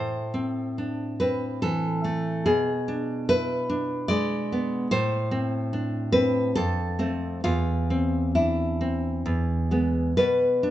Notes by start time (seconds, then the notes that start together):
Already playing: A2 C5
0.34 C4
0.78 D4
1.20 C4 B4
1.62 E3 A4
2.04 A3
2.46 B2 G#4
2.88 D4
3.29 E4 B4
3.70 D4
4.08 G#3 D5
4.52 B3
4.91 A2 C5
5.31 C4
5.73 D4
6.12 C4 B4
6.55 F2 A4
6.99 A3 C4
7.44 E2 F4
7.90 C4
8.35 D4 E4
8.81 C4
9.26 E2
9.71 G#3 B3
10.17 B2 B4
10.63 D4